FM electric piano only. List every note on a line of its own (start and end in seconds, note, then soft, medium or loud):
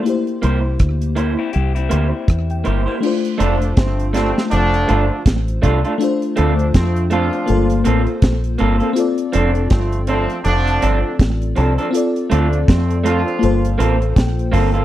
0.03 2.60 A#3 medium
0.03 2.61 E4 medium
0.07 2.62 G4 medium
0.07 2.26 C5 medium
2.51 2.65 G5 medium
2.66 2.86 E5 medium
2.87 3.05 C5 medium
3.00 5.95 A3 medium
3.00 5.96 D4 medium
3.00 5.96 F4 medium
3.07 5.98 C5 medium
5.98 7.44 A3 medium
5.98 7.45 D4 medium
5.98 7.46 F4 medium
6.04 7.47 C5 medium
7.46 8.93 A#3 medium
7.46 8.94 F4 medium
7.46 8.95 A4 medium
7.52 8.96 C5 medium
8.93 11.88 C4 medium
8.93 11.89 F4 medium
8.98 11.90 A4 medium
8.98 11.91 D5 medium
11.91 13.38 C4 medium
11.91 13.39 F4 medium
11.95 13.40 A4 medium
11.95 13.41 D5 medium
13.39 14.85 A#3 medium
13.39 14.85 F4 medium
13.43 14.85 A4 medium
13.43 14.85 C5 medium
14.16 14.51 G5 medium
14.53 14.85 F5 medium